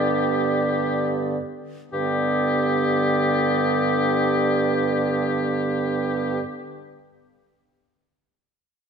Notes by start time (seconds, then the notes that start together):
Already playing: G2 D3 B3 G4 D5
1.92 G2 D3 B3 G4 D5